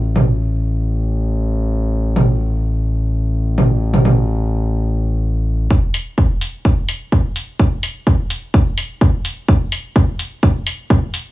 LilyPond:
<<
  \new Staff \with { instrumentName = "Analog synth bass" } { \clef bass \time 4/4 \key a \dorian \tempo 4 = 127 a,,1~ | a,,1~ | a,,1 | r1 |
r1 | r1 | }
  \new DrumStaff \with { instrumentName = "Drums" } \drummode { \time 4/4 r16 toml8. r4 r4 r4 | r8 toml8 r4 r4 r8 toml8 | r16 toml16 toml8 r4 r4 r4 | bd8 hho8 bd8 hho8 bd8 hho8 bd8 hho8 |
bd8 hho8 bd8 hho8 bd8 hho8 bd8 hho8 | bd8 hho8 bd8 hho8 bd8 hho8 bd8 hho8 | }
>>